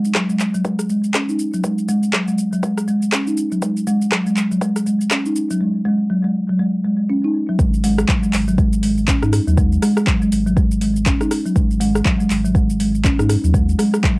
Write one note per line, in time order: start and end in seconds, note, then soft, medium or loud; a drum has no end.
0.05 shaker medium
0.15 0.28 F#3 medium
0.15 kick loud
0.15 cross-stick loud
0.15 clap loud
0.15 shaker medium
0.30 0.39 G#3 medium
0.30 shaker soft
0.40 clap medium
0.40 shaker medium
0.54 0.60 F#3 medium
0.54 shaker soft
0.65 0.78 G#3 medium
0.65 kick loud
0.65 shaker medium
0.79 cross-stick medium
0.79 shaker medium
0.89 0.98 G#3 medium
0.89 shaker medium
1.04 shaker soft
1.14 1.28 C#4 medium
1.14 kick loud
1.14 cross-stick loud
1.14 clap loud
1.14 shaker medium
1.29 1.34 D#4 medium
1.29 shaker medium
1.39 shaker medium
1.54 1.59 F#3 medium
1.54 shaker medium
1.64 1.77 G#3 medium
1.64 kick loud
1.64 shaker medium
1.78 shaker medium
1.88 2.03 G#3 loud
1.88 shaker medium
2.03 shaker medium
2.13 2.27 F#3 medium
2.13 kick loud
2.13 cross-stick loud
2.13 clap medium
2.13 shaker medium
2.28 2.38 G#3 medium
2.28 shaker medium
2.38 shaker medium
2.53 2.58 F#3 medium
2.53 shaker medium
2.63 2.76 G#3 medium
2.63 kick loud
2.63 shaker medium
2.77 cross-stick medium
2.77 shaker medium
2.88 2.96 G#3 medium
2.88 shaker medium
3.02 shaker medium
3.12 3.27 C#4 medium
3.12 kick loud
3.12 cross-stick loud
3.12 clap loud
3.12 shaker loud
3.27 3.33 D#4 medium
3.27 shaker medium
3.37 shaker loud
3.52 3.58 F#3 medium
3.52 shaker medium
3.62 3.75 G#3 medium
3.62 kick loud
3.62 shaker loud
3.77 shaker medium
3.87 4.01 G#3 loud
3.87 shaker loud
4.02 shaker medium
4.12 4.25 F#3 medium
4.12 kick loud
4.12 cross-stick loud
4.12 clap medium
4.12 shaker medium
4.27 4.36 G#3 medium
4.27 shaker medium
4.37 clap soft
4.37 shaker medium
4.51 4.57 F#3 medium
4.51 shaker medium
4.61 4.75 G#3 medium
4.61 kick loud
4.61 shaker medium
4.76 cross-stick medium
4.76 shaker medium
4.86 4.94 G#3 medium
4.86 shaker medium
5.01 shaker medium
5.11 5.25 C#4 medium
5.11 kick loud
5.11 cross-stick loud
5.11 clap medium
5.11 shaker loud
5.26 5.31 D#4 medium
5.26 shaker medium
5.36 shaker loud
5.50 5.56 F#3 medium
5.50 shaker medium
5.61 5.74 G#3 medium
5.85 5.99 G#3 loud
6.10 6.23 F#3 medium
6.24 6.34 G#3 medium
6.49 6.55 F#3 medium
6.60 6.73 G#3 medium
6.85 6.92 G#3 medium
7.10 7.23 C#4 medium
7.24 7.30 D#4 medium
7.49 7.54 F#3 medium
7.59 8.04 G#1 loud
7.59 7.72 G#3 medium
7.59 kick loud
7.59 shaker medium
7.74 shaker medium
7.84 7.98 G#3 loud
7.84 open hi-hat loud
7.84 shaker loud
7.98 cross-stick loud
7.98 shaker medium
8.09 8.22 F#3 medium
8.09 kick loud
8.09 clap loud
8.09 shaker medium
8.23 8.32 G#3 medium
8.23 shaker medium
8.33 9.16 G#1 medium
8.33 clap medium
8.33 open hi-hat medium
8.33 shaker medium
8.48 8.54 F#3 medium
8.48 shaker medium
8.58 8.71 G#3 medium
8.58 kick loud
8.58 shaker medium
8.73 shaker loud
8.83 8.91 G#3 medium
8.83 open hi-hat loud
8.83 shaker medium
8.98 shaker medium
9.08 9.22 C#4 medium
9.08 kick loud
9.08 clap loud
9.08 shaker loud
9.22 9.40 G#2 loud
9.22 9.28 D#4 medium
9.22 cross-stick medium
9.22 shaker medium
9.33 cross-stick medium
9.33 open hi-hat medium
9.33 shaker loud
9.47 9.78 D#2 loud
9.47 9.53 F#3 medium
9.47 shaker medium
9.57 9.71 G#3 medium
9.57 kick loud
9.57 shaker loud
9.72 shaker medium
9.82 9.96 G#3 loud
9.82 cross-stick medium
9.82 open hi-hat medium
9.82 shaker loud
9.97 cross-stick loud
9.97 shaker medium
10.07 10.20 F#3 medium
10.07 kick loud
10.07 clap medium
10.07 shaker medium
10.22 10.31 G#3 medium
10.22 shaker medium
10.32 11.15 G#1 medium
10.32 open hi-hat medium
10.32 shaker loud
10.46 10.52 F#3 medium
10.46 shaker medium
10.57 10.70 G#3 medium
10.57 kick loud
10.57 shaker medium
10.71 shaker loud
10.81 10.89 G#3 medium
10.81 open hi-hat medium
10.81 shaker medium
10.96 shaker medium
11.06 11.20 C#4 medium
11.06 kick loud
11.06 clap loud
11.06 shaker loud
11.21 11.26 D#4 medium
11.21 cross-stick medium
11.21 shaker medium
11.31 cross-stick medium
11.31 open hi-hat medium
11.31 shaker medium
11.46 11.51 F#3 medium
11.46 shaker medium
11.56 12.01 G#1 loud
11.56 11.69 G#3 medium
11.56 kick loud
11.56 shaker loud
11.71 shaker medium
11.81 11.94 G#3 loud
11.81 open hi-hat medium
11.81 shaker loud
11.95 cross-stick medium
11.95 shaker medium
12.05 12.19 F#3 medium
12.05 kick loud
12.05 clap medium
12.05 shaker medium
12.20 12.29 G#3 medium
12.20 shaker medium
12.30 13.13 G#1 medium
12.30 clap medium
12.30 open hi-hat medium
12.30 shaker loud
12.45 12.50 F#3 medium
12.45 shaker medium
12.55 12.68 G#3 medium
12.55 kick loud
12.55 shaker medium
12.70 shaker loud
12.80 12.88 G#3 medium
12.80 open hi-hat medium
12.80 shaker medium
12.95 shaker medium
13.04 13.18 C#4 medium
13.04 kick loud
13.04 clap loud
13.04 shaker loud
13.19 13.37 G#2 loud
13.19 13.25 D#4 medium
13.19 cross-stick medium
13.19 shaker medium
13.30 cross-stick medium
13.30 open hi-hat medium
13.30 shaker loud
13.44 13.75 D#2 loud
13.44 13.50 F#3 medium
13.44 shaker medium
13.54 13.67 G#3 medium
13.54 kick loud
13.54 shaker loud
13.69 shaker medium
13.79 13.93 G#3 loud
13.79 cross-stick medium
13.79 open hi-hat medium
13.79 shaker loud
13.94 cross-stick medium
13.94 shaker medium
14.04 14.17 F#3 medium
14.04 kick loud
14.04 clap medium
14.04 shaker medium